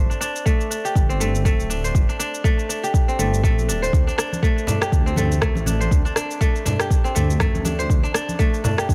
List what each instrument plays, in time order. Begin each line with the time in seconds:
Already playing: kora A3 C4 G4 C5
0.10 kora D4, shaker
0.21 kora D4, shaker
0.36 shaker
0.46 kora A3, kick, shaker
0.61 shaker
0.70 kora D4, shaker
0.85 kora G4, shaker
0.95 detuned saw bass G1, kick, shaker
1.09 kora C4, shaker
1.20 kora A3, shaker
1.35 shaker
1.45 kora A3, kick, shaker
1.59 detuned saw bass D1, shaker
1.70 kora D4, shaker
1.84 kora C5, shaker
1.95 detuned saw bass G1, kick, shaker
2.09 kora D4, shaker
2.19 kora D4, shaker
2.34 shaker
2.44 kora A3, kick, shaker
2.59 shaker
2.69 kora D4, shaker
2.83 kora G4, shaker
2.94 kick, shaker
3.08 kora C4, shaker
3.19 detuned saw bass G1, kora A3, shaker
3.34 shaker
3.43 detuned saw bass A#1, kora A3, kick, shaker
3.57 detuned saw bass A#1, shaker
3.68 detuned saw bass D1, kora D4, shaker
3.82 kora C5, shaker
3.93 detuned saw bass D2, kick, shaker
4.07 kora D4, shaker
4.18 kora D4, cross-stick, shaker
4.32 high conga, shaker
4.43 kora A3, kick, shaker
4.58 shaker
4.67 kora D4, mid tom, low conga, shaker
4.81 kora G4, cross-stick, shaker
4.92 detuned saw bass D2, kick, shaker
5.06 kora C4, shaker
5.16 kora A3, mid tom, high conga, shaker
5.32 shaker
5.41 kora A3, kick, cross-stick, shaker
5.55 detuned saw bass A1, high conga, shaker
5.66 kora D4, high conga, shaker
5.80 kora C5, shaker
5.91 detuned saw bass D2, kick, shaker
6.05 kora D4, shaker
6.16 kora D4, cross-stick, shaker
6.31 shaker
6.41 kora A3, kick, shaker
6.56 shaker
6.65 kora D4, mid tom, low conga, shaker
6.80 kora G4, cross-stick, shaker
6.90 kick, shaker
7.04 kora C4, shaker
7.15 detuned saw bass D2, kora A3, mid tom, shaker
7.30 shaker
7.40 kora A3, kick, cross-stick, mid tom, high conga, shaker
7.55 high conga, shaker
7.65 kora D4, high conga, shaker
7.79 kora C5, shaker
7.90 detuned saw bass D2, kick, shaker
8.03 kora D4, shaker
8.14 kora D4, cross-stick, shaker
8.29 high conga, shaker
8.39 kora A3, kick, shaker
8.54 shaker
8.64 kora D4, mid tom, low conga, shaker
8.78 kora G4, cross-stick, shaker
8.89 detuned saw bass D2, kick, shaker